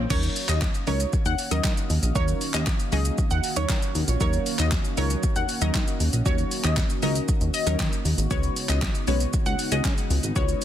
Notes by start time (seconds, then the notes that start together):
Already playing: G#3 C#5, swell
0.10 D#2 D#3 F#3 A#3 C#4 D#4 F#4 A#4 C#5 F5, kick, crash, shaker
0.23 closed hi-hat, shaker
0.36 open hi-hat, shaker
0.49 D#2 D#5, clap, closed hi-hat, shaker
0.61 kick, snare, clap, shaker
0.74 closed hi-hat, shaker
0.87 C#2 F#3 C#4 D#4 A#4 C#5, open hi-hat, shaker
1.00 closed hi-hat, shaker
1.13 kick, shaker
1.26 D#2 F#5, closed hi-hat, shaker
1.38 open hi-hat, shaker
1.51 D#2 F#3 C#4 D#4 A#4 D#5, closed hi-hat, shaker
1.64 D#3, kick, snare, clap, shaker
1.77 closed hi-hat, shaker
1.90 D#2, open hi-hat, shaker
2.03 A#1, closed hi-hat, shaker
2.15 D#2 F#3 C#4 D#4 A#4 C#5, kick, shaker
2.28 closed hi-hat, shaker
2.41 open hi-hat, shaker
2.54 D#2 D#5, clap, closed hi-hat, shaker
2.66 kick, snare, clap, shaker
2.80 closed hi-hat, shaker
2.92 C#2 F#3 C#4 D#4 G#4 D#5, open hi-hat, shaker
3.05 closed hi-hat, shaker
3.18 kick, shaker
3.31 D#2 F#5, closed hi-hat, shaker
3.44 open hi-hat, shaker
3.56 D#2 F#3 C#4 D#4 A#4 C#5, closed hi-hat, shaker
3.69 D#3, kick, snare, clap, shaker
3.82 closed hi-hat, shaker
3.95 D#2, open hi-hat, shaker
4.08 A#1, closed hi-hat, shaker
4.20 D#2 F#3 C#4 D#4 A#4 C#5, kick, shaker
4.33 closed hi-hat, shaker
4.46 open hi-hat, shaker
4.59 D#2 D#5, clap, closed hi-hat, shaker
4.72 kick, snare, clap, shaker
4.85 closed hi-hat, shaker
4.97 C#2 F#3 C#4 D#4 A#4 C#5, open hi-hat, shaker
5.10 closed hi-hat, shaker
5.23 kick, shaker
5.36 D#2 F#5, closed hi-hat, shaker
5.49 open hi-hat, shaker
5.61 D#2 F#3 C#4 D#4 A#4 D#5, closed hi-hat, shaker
5.74 D#3, kick, snare, clap, shaker
5.88 closed hi-hat, shaker
6.00 D#2, open hi-hat, shaker
6.13 A#1, closed hi-hat, shaker
6.26 D#2 F#3 C#4 D#4 F#4 C#5, kick, shaker
6.38 closed hi-hat, shaker
6.51 open hi-hat, shaker
6.64 D#2 D#5, clap, closed hi-hat, shaker
6.77 kick, snare, clap, shaker
6.90 closed hi-hat, shaker
7.02 C#2 F#3 C#4 D#4 A#4 D#5, open hi-hat, shaker
7.15 closed hi-hat, shaker
7.28 kick, shaker
7.41 D#2, closed hi-hat, shaker
7.54 D#5, open hi-hat, shaker
7.66 D#2 F#3 C#4 D#4 A#4, closed hi-hat, shaker
7.79 D#3, kick, snare, clap, shaker
7.93 closed hi-hat, shaker
8.05 D#2, open hi-hat, shaker
8.18 G#1, closed hi-hat, shaker
8.31 C#2 C#3 G#3 B3 C#4 D#4 F#4 B4 C#5, kick, shaker
8.43 closed hi-hat, shaker
8.56 open hi-hat, shaker
8.69 C#2 D#5, clap, closed hi-hat, shaker
8.82 kick, snare, clap, shaker
8.95 closed hi-hat, shaker
9.07 B1 G#3 C#4 F#4 B4 C#5, open hi-hat, shaker
9.20 closed hi-hat, shaker
9.33 kick, shaker
9.46 C#2 F#5, closed hi-hat, shaker
9.59 open hi-hat, shaker
9.72 C#2 G#3 C#4 F#4 G#4 D#5, closed hi-hat, shaker
9.84 C#3, kick, snare, clap, shaker
9.98 closed hi-hat, shaker
10.10 C#2, open hi-hat, shaker
10.23 G#1, closed hi-hat, shaker
10.36 C#2 G#3 C#4 F#4 B4 C#5, kick, shaker
10.49 closed hi-hat, shaker